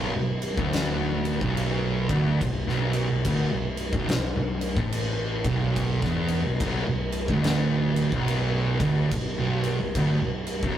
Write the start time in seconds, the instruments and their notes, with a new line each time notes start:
Already playing: fingered electric bass B0, distorted electric guitar B1
0.15 fingered electric bass B0, distorted electric guitar B1
0.42 crash
0.57 fingered electric bass D1, distorted electric guitar D2, kick
0.73 snare, crash
1.25 crash
1.41 fingered electric bass B0, distorted electric guitar B1, kick
1.57 crash
2.09 fingered electric bass D1, distorted electric guitar D2, kick, crash
2.41 fingered electric bass B0, distorted electric guitar B1, kick, crash
2.67 fingered electric bass B0, distorted electric guitar B1, snare
2.93 crash
3.09 fingered electric bass B0, distorted electric guitar B1
3.25 fingered electric bass D1, distorted electric guitar D2, kick, crash
3.51 fingered electric bass B0, distorted electric guitar B1
3.77 crash
3.93 fingered electric bass B0, distorted electric guitar B1, kick
4.09 fingered electric bass B0, distorted electric guitar B1, snare, crash
4.34 fingered electric bass B0, distorted electric guitar B1
4.61 crash
4.76 fingered electric bass A1, distorted electric guitar A2, kick
4.92 crash
5.44 fingered electric bass B0, distorted electric guitar B1, kick, crash
5.76 kick, crash
6.02 fingered electric bass E1, distorted electric guitar E2, kick, snare
6.28 crash
6.44 fingered electric bass B0, distorted electric guitar B1
6.60 fingered electric bass B0, distorted electric guitar B1, kick, crash
6.86 fingered electric bass B0, distorted electric guitar B1
7.12 crash
7.28 fingered electric bass D1, distorted electric guitar D2, kick
7.44 snare, crash
7.96 crash
8.12 fingered electric bass B0, distorted electric guitar B1, kick
8.28 crash
8.80 fingered electric bass D1, distorted electric guitar D2, kick, crash
9.11 fingered electric bass B0, distorted electric guitar B1, kick, crash
9.38 fingered electric bass B0, distorted electric guitar B1
9.64 crash
9.80 fingered electric bass B0, distorted electric guitar B1
9.95 fingered electric bass D1, distorted electric guitar D2, kick, crash
10.21 fingered electric bass B0, distorted electric guitar B1
10.47 crash
10.63 fingered electric bass B0, distorted electric guitar B1, kick